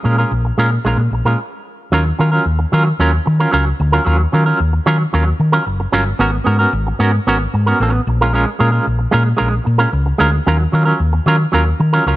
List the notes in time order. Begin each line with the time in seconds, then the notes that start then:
0.04 A#2 G#3 C#4 F4 A#4
0.18 G#3 C#4 F4 A#4
0.32 A#1
0.45 muted clean electric guitar stroke
0.58 A#2 G#3 C#4 F4 A#4
0.73 muted clean electric guitar stroke
0.85 A#1 G#3 C#4 F4 A#4
0.98 A#2, muted clean electric guitar stroke
1.11 A#1, muted clean electric guitar stroke
1.25 A#2 G#3 C#4 F4 A#4
1.92 D#2 F#3 C#4 F4 A#4
2.06 muted clean electric guitar stroke
2.19 D#3 F#3 C#4 F4 A#4
2.32 F#3 C#4 F4 A#4
2.46 D#2
2.59 muted clean electric guitar stroke
2.72 D#3 F#3 C#4 F4 A#4
2.85 muted clean electric guitar stroke
2.99 D#2 F#3 C#4 F4 A#4
3.14 muted clean electric guitar stroke
3.26 D#3, muted clean electric guitar stroke
3.40 F#3 C#4 F4 A#4
3.51 C#2 F#3 C#4 F4 A#4
3.67 muted clean electric guitar stroke
3.80 D2, muted clean electric guitar stroke
3.92 F#3 C#4 F4 A#4
4.05 D#2 F#3 C#4 F4 A#4
4.19 muted clean electric guitar stroke
4.32 D#3 F#3 C#4 F4 A#4
4.46 F#3 C#4 F4 A#4
4.60 D#2
4.73 muted clean electric guitar stroke
4.86 D#3 F#3 C#4 F4 A#4
5.00 muted clean electric guitar stroke
5.13 D#2 F#3 C#4 F4 A#4
5.26 muted clean electric guitar stroke
5.40 D#3, muted clean electric guitar stroke
5.52 F#3 C#4 F4 A#4
5.66 F#1, muted clean electric guitar stroke
5.80 muted clean electric guitar stroke
5.92 G1 F#3 C#4 F4 A#4
6.06 muted clean electric guitar stroke
6.19 G#1 B3 C#4 F#4 A#4
6.33 muted clean electric guitar stroke
6.44 G#2 B3 C#4 F#4 A#4
6.59 B3 C#4 F#4 A#4
6.73 G#1
6.87 muted clean electric guitar stroke
6.99 G#2 B3 C#4 F#4 A#4
7.14 muted clean electric guitar stroke
7.27 G#1 B3 C#4 F#4 A#4
7.40 muted clean electric guitar stroke
7.54 G#2, muted clean electric guitar stroke
7.66 B3 C#4 F#4 A#4
7.80 A1 B3 C#4 F#4 A#4
7.93 muted clean electric guitar stroke
8.07 A#1, muted clean electric guitar stroke
8.21 G#3 C#4 F4 A#4
8.33 G#3 C#4 F4 A#4
8.47 muted clean electric guitar stroke
8.59 A#2 G#3 C#4 F4 A#4
8.72 G#3 C#4 F4 A#4
8.87 A#1
8.99 muted clean electric guitar stroke
9.11 A#2 G#3 C#4 F4 A#4
9.25 muted clean electric guitar stroke
9.37 A#1 G#3 C#4 F4 A#4
9.51 muted clean electric guitar stroke
9.64 A#2, muted clean electric guitar stroke
9.78 G#3 C#4 F4 A#4
9.92 C#2, muted clean electric guitar stroke
10.06 muted clean electric guitar stroke
10.18 D2 G#3 C#4 F4 A#4
10.33 muted clean electric guitar stroke
10.47 D#2 F#3 C#4 F4 A#4
10.59 muted clean electric guitar stroke
10.72 D#3 F#3 C#4 F4 A#4
10.85 F#3 C#4 F4 A#4
11.00 D#2
11.13 muted clean electric guitar stroke
11.26 D#3 F#3 C#4 F4 A#4
11.39 muted clean electric guitar stroke
11.52 D#2 F#3 C#4 F4 A#4
11.66 muted clean electric guitar stroke
11.80 D#3, muted clean electric guitar stroke
11.93 F#3 C#4 F4 A#4
12.06 C#2 F#3 C#4 F4 A#4